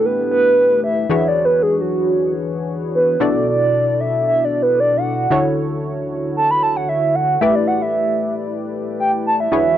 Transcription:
Already playing: analog polysynth A3 D4 E4 G4 B4
0.05 soft synth lead B4
0.31 soft synth lead B4
0.84 soft synth lead E5
1.09 analog polysynth E3 D4 F#4 G#4 B4 C#5, soft synth lead E5
1.28 soft synth lead D5
1.45 soft synth lead B4
1.62 soft synth lead G#4
1.80 soft synth lead F#4
2.95 soft synth lead B4
3.20 analog polysynth B2 D4 E4 F#4 A4 D5, soft synth lead D5
3.48 soft synth lead D5
4.00 soft synth lead E5
4.27 soft synth lead E5
4.45 soft synth lead D5
4.62 soft synth lead B4
4.80 soft synth lead D5
4.97 soft synth lead F#5
5.30 analog polysynth D3 E4 F#4 A4 C#5
6.37 soft synth lead A5
6.51 soft synth lead B5
6.63 soft synth lead A5
6.76 soft synth lead F#5
6.89 soft synth lead E5
7.15 soft synth lead F#5
7.41 analog polysynth A3 E4 G4 B4 D5, soft synth lead E5
7.55 soft synth lead D5
7.67 soft synth lead F#5
7.82 soft synth lead E5
9.00 soft synth lead G5
9.27 soft synth lead A5
9.40 soft synth lead E5
9.52 analog polysynth E3 D4 F#4 G#4 B4 C#5

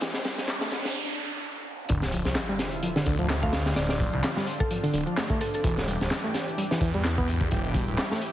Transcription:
Already playing: analog synth pad E3 D4 G4, riser
0.01 detuned saw bass E1, reed electric piano E3, snare, closed hi-hat, noise sweep
0.14 snare, closed hi-hat
0.25 reed electric piano G3, snare, closed hi-hat
0.38 snare, closed hi-hat
0.48 snare, clap, closed hi-hat
0.61 reed electric piano A3, snare, closed hi-hat
0.71 snare, closed hi-hat
0.85 snare, closed hi-hat
1.89 detuned saw bass D1, analog synth pad D3 C4 E4 F4, reed electric piano D3, kick, closed hi-hat, sub drop
2.02 snare, closed hi-hat
2.12 reed electric piano F3, closed hi-hat, open hi-hat
2.25 detuned saw bass C2, snare, closed hi-hat
2.35 snare, clap, closed hi-hat
2.49 reed electric piano G3
2.59 snare, closed hi-hat, open hi-hat
2.72 closed hi-hat
2.83 reed electric piano F3, closed hi-hat
2.96 reed electric piano D3, snare, closed hi-hat
3.06 detuned saw bass D2, reed electric piano D3, kick, closed hi-hat, open hi-hat
3.19 reed electric piano F3, closed hi-hat
3.29 snare, clap, closed hi-hat
3.43 reed electric piano A3, synth pluck F5, kick
3.53 snare, closed hi-hat, open hi-hat
3.66 snare, closed hi-hat
3.76 detuned saw bass D1, reed electric piano D3, analog synth pad D4, synth pluck D5, snare, closed hi-hat
3.89 synth pluck D5, snare, closed hi-hat
4.00 reed electric piano F3, kick, closed hi-hat, open hi-hat
4.13 detuned saw bass C2, closed hi-hat
4.23 snare, clap, closed hi-hat
4.37 reed electric piano G3, snare
4.47 closed hi-hat, open hi-hat
4.60 synth pluck A4, kick, closed hi-hat
4.71 reed electric piano F3, closed hi-hat
4.83 reed electric piano D3, open hi-hat
4.94 detuned saw bass D1, reed electric piano D3, closed hi-hat, open hi-hat
5.07 reed electric piano F3, closed hi-hat
5.17 reed electric piano A3, snare, clap, closed hi-hat
5.30 reed electric piano A3, kick, closed hi-hat
5.41 synth pluck A4, closed hi-hat, open hi-hat
5.54 synth pluck A4, closed hi-hat
5.64 detuned saw bass E1, reed electric piano E3, analog synth pad E3 G4, kick, closed hi-hat
5.78 snare, closed hi-hat
5.87 reed electric piano G3, closed hi-hat, open hi-hat
6.01 detuned saw bass D1, snare, closed hi-hat
6.11 snare, clap, closed hi-hat
6.24 reed electric piano A3
6.34 snare, closed hi-hat, open hi-hat
6.48 closed hi-hat
6.58 reed electric piano G3, closed hi-hat
6.71 reed electric piano E3, snare, closed hi-hat
6.81 detuned saw bass E2, reed electric piano E3, kick, closed hi-hat, open hi-hat
6.94 reed electric piano G3, closed hi-hat
7.04 reed electric piano B3, snare, clap, closed hi-hat
7.18 reed electric piano B3, kick
7.28 closed hi-hat, open hi-hat
7.41 kick, closed hi-hat
7.51 detuned saw bass E1, reed electric piano E3, analog synth pad E4, kick, closed hi-hat
7.64 closed hi-hat
7.74 reed electric piano G3, kick, closed hi-hat, open hi-hat
7.88 detuned saw bass D1, closed hi-hat
7.98 snare, clap, closed hi-hat
8.11 reed electric piano A3, snare
8.22 closed hi-hat, open hi-hat

